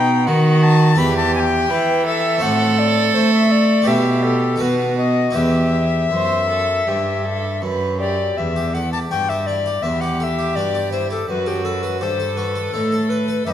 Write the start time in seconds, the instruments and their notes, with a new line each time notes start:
Already playing: harpsichord B2 D#4 B4, cello B2, violin D#4, recorder G5
0.27 cello D#3, harpsichord D#3, violin F#4, recorder F#5
0.63 recorder A5
0.95 harpsichord E2 E4 B4, cello E2, violin G4, recorder B5
1.17 recorder A5
1.35 recorder G#5
1.40 recorder G5
1.70 harpsichord E3, cello E3, violin B4
2.06 violin A4, recorder E5
2.38 harpsichord C4 F#4 C5
2.42 harpsichord A2, cello A2, recorder F#5
2.79 recorder D5
3.15 harpsichord A3, cello A3, recorder C5
3.33 recorder E5
3.51 recorder D5
3.82 harpsichord E4 G4 B4
3.87 harpsichord B2, cello B2, violin G4, recorder E5
4.23 recorder A4
4.56 harpsichord D#4 A4 B4
4.60 harpsichord B2, cello B2, violin F#4, recorder B4
4.98 recorder D#5
5.31 harpsichord E4 G4 B4
5.35 harpsichord E2, cello E2, violin G4, recorder E5
6.11 harpsichord F#2, cello F#2, violin C5
6.49 violin A4
6.87 harpsichord G2, cello G2, violin G4
7.25 violin A4
7.62 cello F#2, harpsichord F#2, violin B4
8.00 violin G4, recorder D5
8.37 cello E2, harpsichord E2, recorder E5
8.56 harpsichord G4
8.74 harpsichord A4, recorder F#5
8.92 harpsichord G4, recorder A5
9.11 cello G2, harpsichord G2 F#4, recorder G5
9.29 harpsichord G4, recorder E5
9.47 harpsichord E4, recorder D5
9.66 harpsichord G4
9.82 harpsichord E2 B3, cello E2, violin G4, recorder E5
10.01 harpsichord G4, recorder F#5
10.19 harpsichord A4, recorder F#5
10.24 recorder E5
10.39 harpsichord G4
10.56 cello G2, harpsichord G2 F#4, recorder D5
10.75 harpsichord G4
10.92 harpsichord E4, recorder C5
11.11 harpsichord G4, recorder A4
11.28 cello F#2, harpsichord F#2, violin F#4, recorder B4
11.46 recorder G4, harpsichord A4
11.65 recorder A4, harpsichord B4
11.83 harpsichord A4, recorder B4
12.01 cello G2, harpsichord G2 G4, violin A4, recorder C5
12.20 harpsichord A4
12.37 harpsichord F#4, recorder B4
12.55 harpsichord A4
12.73 harpsichord A2 D#4, cello A2, recorder A4
12.92 harpsichord A4
13.09 recorder B4, harpsichord B4
13.28 harpsichord A4
13.46 harpsichord F#2 G4, cello F#2, violin B4, recorder E5